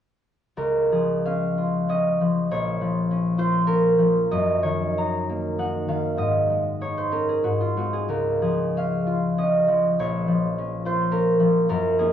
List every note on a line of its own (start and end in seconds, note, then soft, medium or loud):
0.57 2.53 C#2 soft
0.57 1.16 A#4 medium
0.92 2.20 F3 soft
0.92 2.54 G#4 soft
1.26 1.88 C#4 soft
1.26 4.33 F5 medium
1.58 3.37 F4 soft
1.89 3.10 C#4 soft
1.89 2.93 D#5 medium
2.21 2.80 F3 soft
2.51 4.34 A#1 soft
2.51 4.34 C#5 medium
2.81 3.97 F3 soft
3.11 3.67 C#4 soft
3.38 4.34 F4 soft
3.38 3.88 C5 medium
3.67 4.34 C#4 soft
3.67 6.22 A#4 medium
3.98 4.34 F3 soft
4.31 6.22 F#2 medium
4.31 6.17 D#5 medium
4.63 5.87 D#3 soft
4.63 6.80 C#5 medium
4.98 5.58 D#4 soft
4.98 6.22 A#5 medium
5.29 6.22 A#3 soft
5.58 6.80 D#4 soft
5.58 6.22 F#5 medium
5.88 6.22 D#3 soft
5.88 6.41 F5 medium
6.17 7.43 G#2 soft
6.17 8.11 D#5 medium
6.50 7.76 G#3 soft
6.81 8.12 D#4 soft
6.81 7.08 C#5 medium
6.98 7.24 C5 soft
7.11 7.47 C#4 soft
7.11 7.39 A#4 medium
7.29 7.56 G#4 soft
7.44 8.12 G#2 soft
7.44 7.72 F#4 medium
7.61 7.88 F4 soft
7.77 10.01 G#3 soft
7.77 8.12 C4 soft
7.77 8.05 F#4 soft
7.93 8.21 G#4 soft
8.08 10.01 C#2 soft
8.08 8.67 A#4 medium
8.42 9.67 F3 soft
8.42 10.01 G#4 soft
8.77 9.37 C#4 soft
8.77 11.71 F5 medium
9.07 10.84 F4 soft
9.38 10.57 C#4 soft
9.38 10.40 D#5 medium
9.68 10.27 F3 soft
9.99 11.71 A#1 medium
9.99 11.71 C#5 medium
10.28 11.38 F3 soft
10.58 11.11 C#4 soft
10.85 11.71 F4 soft
10.85 11.32 C5 medium
11.11 11.70 C#4 soft
11.11 11.68 A#4 medium
11.40 11.70 F3 soft
11.69 12.13 F#2 medium
11.69 12.13 A#4 medium
11.99 12.13 A#3 soft
11.99 12.13 D#4 soft
11.99 12.13 G#4 medium